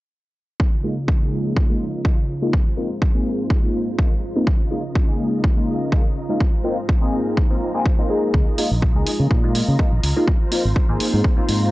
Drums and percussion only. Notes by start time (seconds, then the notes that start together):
0.60 kick
1.08 kick
1.57 kick
2.05 kick
2.53 kick
3.02 kick
3.50 kick
3.99 kick
4.47 kick
4.95 kick
5.44 kick
5.92 kick
6.40 kick
6.89 kick
7.37 kick
7.86 kick
8.34 kick
8.58 open hi-hat
8.82 kick
9.07 open hi-hat
9.31 kick
9.55 open hi-hat
9.79 kick
10.03 open hi-hat
10.28 kick
10.52 open hi-hat, tambourine
10.76 kick
11.00 open hi-hat, tambourine
11.24 kick
11.49 open hi-hat